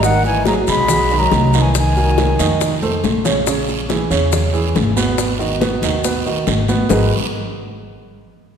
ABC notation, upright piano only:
X:1
M:4/4
L:1/8
Q:1/4=140
K:G#m
V:1 name="Upright piano"
[D,Dd]2 [F,FG]2 [F,FG] [D,Dd]2 [D,Dd]- | [D,Dd] [_G,_G_B] [G,GB] [_E,_E_e]2 [=A,=A=c]2 [^C,C^c] | [C,Cc]2 [E,EG] [C,Cc]2 [E,EG]2 [B,,B,B]- | [B,,B,B] [D,DF] [B,,B,B] [D,DF] [B,,B,B] [D,DF]2 [B,,B,B] |
[G,DFGAB] z6 z |]